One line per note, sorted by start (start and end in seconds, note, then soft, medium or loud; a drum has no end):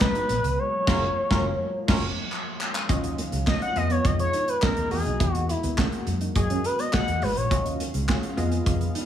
0.00 0.11 G#2 loud
0.00 0.56 B2 medium
0.00 2.85 F#3 medium
0.00 0.32 G#3 medium
0.00 2.85 G#3 medium
0.00 0.32 B3 medium
0.00 0.56 B3 medium
0.00 0.33 D#4 medium
0.00 0.33 F#4 medium
0.00 0.60 B4 loud
0.00 0.33 A#5 medium
0.00 kick loud
0.00 snare loud
0.00 clap medium
0.15 0.25 D#4 medium
0.15 closed hi-hat medium
0.29 0.40 A#1 medium
0.29 0.39 B3 medium
0.29 closed hi-hat medium
0.44 0.55 C#2 medium
0.44 closed hi-hat medium
0.59 2.87 F3 medium
0.59 2.87 A#3 medium
0.59 2.32 C#5 loud
0.87 1.07 F#1 loud
0.87 1.07 G#3 loud
0.87 1.07 C#4 loud
0.87 1.02 C#4 loud
0.87 1.02 F4 loud
0.87 1.07 F4 loud
0.87 1.07 F#4 loud
0.87 1.02 A#4 loud
0.87 1.07 A#4 loud
0.87 kick loud
0.87 snare loud
0.87 crash medium
1.30 1.50 F#1 loud
1.30 1.50 G#3 loud
1.30 1.50 C#4 loud
1.30 1.45 C#4 loud
1.30 1.45 F4 loud
1.30 1.50 F4 loud
1.30 1.50 F#4 loud
1.30 1.45 A#4 loud
1.30 1.51 A#4 loud
1.30 kick loud
1.30 snare loud
1.88 2.08 F#1 medium
1.88 2.08 G#3 loud
1.88 2.08 C#4 loud
1.88 2.03 C#4 loud
1.88 2.03 F4 loud
1.88 2.08 F4 loud
1.88 2.08 F#4 loud
1.88 2.03 A#4 loud
1.88 2.08 A#4 loud
1.88 kick loud
1.88 snare loud
1.88 crash loud
2.32 clap medium
2.61 clap loud
2.75 clap loud
2.89 3.21 D#2 medium
2.89 9.05 D#3 medium
2.89 3.75 F#3 medium
2.89 3.19 C#4 loud
2.89 3.75 C#4 medium
2.89 3.19 F4 medium
2.89 3.20 F#4 loud
2.89 3.20 D#5 loud
2.89 3.75 F5 medium
2.89 kick loud
2.89 closed hi-hat loud
3.04 muted clean electric guitar stroke soft
3.04 closed hi-hat medium
3.18 3.28 A#3 medium
3.18 closed hi-hat medium
3.32 3.43 C#2 medium
3.32 3.42 G#3 medium
3.32 closed hi-hat medium
3.47 3.57 A#3 medium
3.47 3.76 C#4 medium
3.47 3.75 F4 medium
3.47 3.76 F#4 medium
3.47 3.61 D#5 loud
3.47 3.75 D#5 medium
3.47 kick loud
3.47 snare loud
3.47 clap medium
3.61 3.78 F#5 loud
3.61 muted clean electric guitar stroke soft
3.61 closed hi-hat medium
3.76 3.97 F2 medium
3.76 7.47 G#3 medium
3.76 4.45 B3 medium
3.76 4.90 B3 medium
3.76 4.45 F4 medium
3.76 4.90 F4 medium
3.76 4.45 G#4 medium
3.76 4.45 D#5 medium
3.76 3.93 D#5 loud
3.76 closed hi-hat medium
3.90 4.00 B3 medium
3.90 4.07 C#5 loud
3.90 closed hi-hat soft
4.05 4.26 F2 loud
4.05 4.19 D#5 loud
4.05 kick loud
4.05 closed hi-hat medium
4.19 4.50 C#5 medium
4.19 closed hi-hat medium
4.33 4.43 D#4 medium
4.33 closed hi-hat medium
4.48 4.62 B4 loud
4.48 closed hi-hat soft
4.62 4.91 B3 medium
4.62 4.72 C#4 medium
4.62 4.91 F4 medium
4.62 4.90 G#4 medium
4.62 4.89 A#4 loud
4.62 4.90 D#5 medium
4.62 kick loud
4.62 snare loud
4.62 clap loud
4.77 4.87 D#2 medium
4.77 closed hi-hat medium
4.91 5.02 E2 medium
4.91 5.60 A#3 medium
4.91 7.48 A#3 medium
4.91 5.60 F#4 medium
4.91 7.48 F#4 medium
4.91 5.61 G#4 medium
4.91 5.33 G#4 loud
4.91 5.61 D#5 medium
4.91 open hi-hat medium
5.06 5.16 B1 loud
5.06 5.15 D#4 medium
5.06 closed hi-hat soft
5.20 5.52 E2 loud
5.20 5.30 E4 medium
5.20 kick loud
5.20 closed hi-hat loud
5.33 5.50 F#4 loud
5.33 closed hi-hat medium
5.49 5.78 E4 medium
5.49 muted clean electric guitar stroke soft
5.49 closed hi-hat medium
5.63 5.74 D#2 medium
5.63 5.73 B3 medium
5.63 closed hi-hat medium
5.78 6.08 A#3 medium
5.78 5.87 C#4 loud
5.78 6.08 F#4 medium
5.78 6.08 G#4 medium
5.78 6.08 F#5 medium
5.78 kick loud
5.78 snare loud
5.78 clap medium
5.92 closed hi-hat soft
6.07 6.28 F#2 medium
6.07 muted clean electric guitar stroke soft
6.07 closed hi-hat medium
6.21 6.31 D#4 medium
6.21 closed hi-hat soft
6.35 6.57 F#2 medium
6.35 6.66 A#3 medium
6.35 6.66 F#4 medium
6.35 6.66 G#4 medium
6.35 6.67 G#4 medium
6.35 6.66 D#5 medium
6.35 kick loud
6.35 closed hi-hat medium
6.50 6.60 C#4 medium
6.50 closed hi-hat medium
6.64 6.81 B4 medium
6.64 muted clean electric guitar stroke soft
6.64 closed hi-hat medium
6.79 6.88 B3 medium
6.79 6.93 D#5 loud
6.79 closed hi-hat soft
6.93 7.23 A#3 medium
6.93 7.23 F#4 medium
6.93 7.23 G#4 medium
6.93 7.24 D#5 loud
6.93 7.24 F#5 loud
6.93 kick loud
6.93 snare loud
6.93 clap medium
7.08 7.18 E2 medium
7.08 7.17 A#3 medium
7.08 closed hi-hat medium
7.22 7.33 G#1 medium
7.22 7.32 G#3 medium
7.22 7.38 B4 medium
7.22 open hi-hat medium
7.37 7.47 A#1 medium
7.37 7.65 C#5 medium
7.37 closed hi-hat medium
7.50 7.83 D#2 loud
7.50 8.37 F#3 medium
7.50 7.81 C#4 medium
7.50 8.37 C#4 medium
7.50 7.81 F4 medium
7.50 7.81 F#4 medium
7.50 7.81 D#5 medium
7.50 9.05 F5 medium
7.50 kick loud
7.50 closed hi-hat loud
7.65 muted clean electric guitar stroke soft
7.65 closed hi-hat medium
7.80 7.89 A#3 medium
7.80 closed hi-hat medium
7.94 8.05 C#2 medium
7.94 8.04 G#3 medium
7.94 closed hi-hat medium
8.08 8.18 A#3 medium
8.08 8.37 C#4 medium
8.08 8.36 F4 medium
8.08 8.38 F#4 medium
8.08 8.36 G#4 loud
8.08 kick loud
8.08 snare loud
8.08 clap medium
8.23 muted clean electric guitar stroke soft
8.23 closed hi-hat medium
8.37 8.59 F2 medium
8.37 9.05 G#3 medium
8.37 9.05 B3 loud
8.37 9.05 B3 medium
8.37 9.05 F4 medium
8.37 9.05 G#4 loud
8.37 9.05 D#5 loud
8.37 closed hi-hat medium
8.52 8.61 B3 medium
8.52 closed hi-hat soft
8.66 8.87 F2 medium
8.66 kick loud
8.66 closed hi-hat loud
8.81 closed hi-hat medium
8.95 9.05 D#4 medium
8.95 closed hi-hat medium